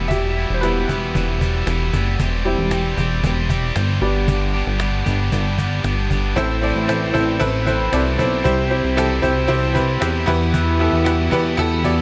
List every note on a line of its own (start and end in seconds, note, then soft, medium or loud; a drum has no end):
0.00 0.46 E1 medium
0.00 0.10 G3 soft
0.00 0.11 B3 medium
0.00 0.10 E4 soft
0.00 0.11 G4 medium
0.00 0.08 E5 medium
0.08 0.36 E2 medium
0.08 0.37 B2 medium
0.08 0.37 E3 medium
0.08 0.37 G3 medium
0.08 0.36 B3 medium
0.08 0.35 E4 loud
0.08 0.53 G4 medium
0.08 0.51 E5 medium
0.08 cajon bass loud
0.24 cajon slap soft
0.36 0.61 E3 soft
0.36 0.62 G3 soft
0.36 0.63 B3 soft
0.36 0.63 E4 medium
0.36 cajon slap soft
0.50 0.87 E1 medium
0.50 cajon slap soft
0.54 0.62 C5 medium
0.61 0.89 E3 medium
0.61 0.97 G3 medium
0.61 0.89 G3 medium
0.61 0.98 B3 medium
0.61 0.89 B3 medium
0.61 1.64 E4 medium
0.61 1.62 B4 medium
0.61 cajon slap medium
0.65 0.88 E4 medium
0.89 1.13 E1 medium
0.89 1.15 E3 soft
0.89 1.15 G3 soft
0.89 1.16 B3 medium
0.89 1.15 E4 soft
0.89 cajon bass medium
1.15 1.64 E1 medium
1.15 1.41 E2 medium
1.15 1.41 B2 medium
1.15 1.42 E3 medium
1.15 1.42 G3 medium
1.15 1.41 B3 medium
1.15 1.39 E4 medium
1.15 cajon bass medium
1.41 1.66 E3 soft
1.41 1.67 G3 soft
1.41 1.68 B3 soft
1.41 1.67 E4 medium
1.41 cajon bass medium
1.55 cajon slap soft
1.67 1.91 E1 loud
1.67 1.93 E3 medium
1.67 1.94 G3 medium
1.67 1.93 B3 medium
1.67 1.92 E4 medium
1.67 cajon slap loud
1.93 2.18 F#1 medium
1.93 2.19 E3 soft
1.93 2.19 G3 soft
1.93 2.20 B3 soft
1.93 2.19 E4 medium
1.93 cajon bass medium
2.20 2.56 E1 loud
2.20 2.46 E3 medium
2.20 2.46 G3 medium
2.20 2.46 C4 medium
2.20 2.44 G4 medium
2.20 cajon bass loud
2.45 3.20 G3 medium
2.45 2.71 G3 soft
2.45 3.20 C4 soft
2.45 2.72 C4 soft
2.45 3.20 E4 medium
2.45 2.71 G4 soft
2.45 cajon slap soft
2.59 2.95 E1 medium
2.59 cajon slap soft
2.71 2.97 E3 medium
2.71 2.98 G3 medium
2.71 2.98 C4 medium
2.71 2.96 G4 medium
2.71 cajon slap loud
2.97 3.22 E1 medium
2.97 3.23 G3 soft
2.97 3.24 C4 soft
2.97 3.23 G4 medium
2.97 cajon bass medium
3.23 3.72 E1 loud
3.23 3.50 E3 medium
3.23 3.50 G3 medium
3.23 3.50 C4 medium
3.23 3.48 G4 medium
3.23 cajon bass medium
3.49 3.76 G3 soft
3.49 3.77 C4 soft
3.49 3.76 G4 soft
3.49 cajon bass medium
3.75 4.00 G1 medium
3.75 4.02 E3 medium
3.75 4.02 G3 medium
3.75 4.02 C4 medium
3.75 4.00 G4 medium
3.75 cajon slap loud
4.01 4.63 G1 loud
4.01 4.76 G3 medium
4.01 4.27 G3 soft
4.01 4.76 B3 medium
4.01 4.27 B3 medium
4.01 4.28 D4 soft
4.01 4.77 D4 medium
4.01 4.28 G4 medium
4.01 cajon slap soft
4.15 cajon slap soft
4.27 4.54 G2 medium
4.27 4.54 D3 medium
4.27 4.54 G3 medium
4.27 4.54 B3 medium
4.27 4.53 D4 medium
4.27 4.52 G4 medium
4.27 cajon bass loud
4.53 4.77 G3 soft
4.53 4.79 B3 soft
4.53 4.80 D4 medium
4.53 4.80 G4 medium
4.53 cajon slap soft
4.67 5.04 G1 loud
4.67 cajon slap soft
4.78 5.05 G3 medium
4.78 5.06 B3 medium
4.78 5.05 D4 medium
4.78 5.03 G4 medium
4.78 cajon slap loud
4.93 cajon slap soft
5.05 5.30 G1 loud
5.05 5.32 G3 soft
5.05 5.32 B3 soft
5.05 5.32 D4 medium
5.05 5.32 G4 soft
5.05 cajon bass medium
5.32 5.81 G1 loud
5.32 5.58 G2 medium
5.32 5.59 D3 medium
5.32 5.59 G3 medium
5.32 5.59 B3 medium
5.32 5.58 D4 medium
5.32 5.57 G4 medium
5.32 cajon bass medium
5.58 5.82 G3 soft
5.58 5.83 B3 soft
5.58 5.84 D4 soft
5.58 5.84 G4 medium
5.58 cajon bass medium
5.71 cajon slap soft
5.83 6.09 G1 loud
5.83 6.10 G3 medium
5.83 6.11 B3 medium
5.83 6.10 D4 medium
5.83 6.09 G4 medium
5.83 cajon slap loud
5.97 cajon slap soft
6.10 6.35 G1 medium
6.10 6.36 G3 soft
6.10 6.37 B3 soft
6.10 6.37 D4 medium
6.10 6.36 G4 medium
6.10 cajon bass medium
6.23 cajon slap soft
6.36 6.73 A1 loud
6.36 6.62 A2 medium
6.36 7.11 A2 medium
6.36 6.63 E3 medium
6.36 8.16 E3 medium
6.36 6.63 A3 medium
6.36 6.60 C4 loud
6.36 6.63 C4 medium
6.36 8.15 E4 medium
6.36 6.60 E4 loud
6.36 6.61 E4 loud
6.36 6.60 A4 medium
6.36 6.61 C5 loud
6.36 cajon bass loud
6.62 6.88 A3 soft
6.62 6.86 C4 medium
6.62 6.89 C4 medium
6.62 6.88 E4 medium
6.62 6.86 E4 medium
6.62 6.86 A4 medium
6.62 6.87 D5 medium
6.62 cajon slap soft
6.76 7.12 A1 medium
6.76 cajon slap soft
6.87 7.15 A2 medium
6.87 7.15 E3 medium
6.87 7.15 A3 medium
6.87 7.11 C4 medium
6.87 7.15 C4 medium
6.87 7.12 E4 medium
6.87 7.13 E4 medium
6.87 7.12 A4 medium
6.87 7.12 C5 medium
6.87 cajon slap loud
7.02 cajon slap soft
7.13 7.39 A1 loud
7.13 7.37 C4 medium
7.13 7.41 C4 medium
7.13 7.38 E4 medium
7.13 7.41 E4 medium
7.13 7.38 A4 medium
7.13 7.38 C5 loud
7.13 cajon bass medium
7.18 7.40 A3 soft
7.28 cajon slap soft
7.39 7.89 A1 loud
7.39 7.67 E3 medium
7.39 7.67 A3 medium
7.39 7.64 C4 loud
7.39 7.67 C4 medium
7.39 7.64 E4 loud
7.39 7.65 E4 medium
7.39 7.64 A4 loud
7.39 7.64 B4 loud
7.39 cajon bass loud
7.66 7.92 A3 soft
7.66 7.90 C4 medium
7.66 7.92 C4 soft
7.66 7.93 E4 medium
7.66 7.90 E4 medium
7.66 7.90 A4 medium
7.66 7.90 C5 medium
7.66 cajon bass medium
7.92 8.18 C2 medium
7.92 8.19 A2 medium
7.92 8.19 E3 medium
7.92 8.19 A3 medium
7.92 8.16 C4 medium
7.92 8.18 C4 loud
7.92 8.16 E4 medium
7.92 8.17 E4 loud
7.92 8.17 A4 medium
7.92 8.17 D5 loud
7.92 cajon slap loud
8.18 8.43 B1 loud
8.18 8.44 A3 soft
8.18 8.42 C4 medium
8.18 8.44 C4 medium
8.18 8.45 E4 medium
8.18 8.42 E4 medium
8.18 8.43 A4 medium
8.18 8.43 C5 medium
8.18 cajon bass loud
8.32 cajon slap soft
8.44 8.82 C2 loud
8.44 8.71 C3 medium
8.44 9.19 C3 medium
8.44 9.99 C3 medium
8.44 8.71 E3 medium
8.44 8.71 G3 medium
8.44 8.68 C4 medium
8.44 9.98 C4 medium
8.44 8.71 C4 medium
8.44 8.68 E4 medium
8.44 8.69 E4 loud
8.44 8.69 G4 medium
8.44 8.69 C5 loud
8.44 cajon bass loud
8.70 8.97 G3 soft
8.70 8.94 C4 medium
8.70 8.98 C4 medium
8.70 8.97 E4 medium
8.70 8.94 E4 medium
8.70 8.95 G4 medium
8.70 8.95 C5 loud
8.70 cajon slap soft
8.84 9.21 C2 medium
8.84 cajon slap soft
8.96 9.23 C3 medium
8.96 9.24 E3 medium
8.96 9.24 G3 medium
8.96 9.20 C4 medium
8.96 9.23 C4 loud
8.96 9.20 E4 medium
8.96 9.21 E4 medium
8.96 9.21 G4 medium
8.96 9.21 A4 loud
8.96 cajon slap loud
9.22 9.48 C2 loud
9.22 9.46 C4 medium
9.22 9.49 C4 soft
9.22 9.46 E4 medium
9.22 9.49 E4 medium
9.22 9.47 G4 medium
9.22 9.47 C5 loud
9.22 cajon bass medium
9.26 9.48 G3 medium
9.38 cajon slap soft
9.47 9.98 C2 loud
9.47 9.75 E3 medium
9.47 9.76 G3 medium
9.47 9.72 C4 loud
9.47 9.75 C4 medium
9.47 9.72 E4 loud
9.47 9.73 E4 medium
9.47 9.73 G4 medium
9.47 9.73 C5 loud
9.47 cajon slap soft
9.74 9.98 C4 medium
9.74 10.02 C4 soft
9.74 9.98 E4 medium
9.74 10.01 E4 medium
9.74 9.99 G4 medium
9.74 9.99 B4 loud
9.74 cajon bass medium
9.78 10.01 G3 soft
10.00 10.26 E2 medium
10.00 10.27 C3 medium
10.00 10.28 E3 medium
10.00 10.28 G3 medium
10.00 10.24 C4 medium
10.00 10.28 C4 medium
10.00 10.25 E4 medium
10.00 10.26 E4 loud
10.00 10.25 G4 medium
10.00 10.25 C5 medium
10.00 cajon slap loud
10.26 10.89 E2 loud
10.26 11.02 E3 medium
10.26 12.02 E3 medium
10.26 10.53 G3 medium
10.26 10.74 B3 loud
10.26 10.54 B3 medium
10.26 10.74 E4 loud
10.26 10.54 E4 medium
10.26 12.02 E4 medium
10.26 10.74 G4 medium
10.26 10.75 B4 loud
10.26 cajon bass medium
10.31 10.53 E3 soft
10.53 10.80 E2 loud
10.53 10.80 B2 medium
10.53 10.80 E3 loud
10.53 10.80 G3 medium
10.53 10.79 B3 medium
10.53 10.78 E4 loud
10.53 cajon bass loud
10.79 11.06 E3 soft
10.79 11.06 G3 medium
10.79 11.03 B3 medium
10.79 11.06 B3 medium
10.79 11.05 E4 medium
10.79 11.03 E4 medium
10.79 11.03 G4 medium
10.79 11.04 A4 medium
10.79 cajon slap soft
10.93 11.29 E2 loud
10.93 cajon slap soft
11.04 11.32 E2 medium
11.04 11.32 B2 medium
11.04 11.33 E3 medium
11.04 11.32 G3 medium
11.04 11.29 B3 medium
11.04 11.31 B3 medium
11.04 11.29 E4 medium
11.04 11.30 E4 medium
11.04 11.29 G4 medium
11.04 11.30 B4 medium
11.04 cajon slap loud
11.31 11.56 E2 medium
11.31 11.56 E3 soft
11.31 11.57 G3 medium
11.31 11.55 B3 loud
11.31 11.58 B3 medium
11.31 11.55 E4 medium
11.31 11.58 E4 medium
11.31 11.55 G4 medium
11.31 11.56 B4 loud
11.31 cajon bass medium
11.45 cajon slap soft
11.57 12.02 E2 loud
11.57 11.84 E3 medium
11.57 11.84 G3 medium
11.57 11.81 B3 loud
11.57 11.84 B3 medium
11.57 11.82 E4 medium
11.57 11.82 G4 loud
11.57 11.82 A4 loud
11.57 cajon bass loud
11.83 12.02 E3 soft
11.83 12.02 G3 soft
11.83 12.02 B3 medium
11.83 12.02 B3 soft
11.83 12.02 E4 medium
11.83 12.02 G4 medium
11.83 12.02 D5 loud
11.83 cajon bass medium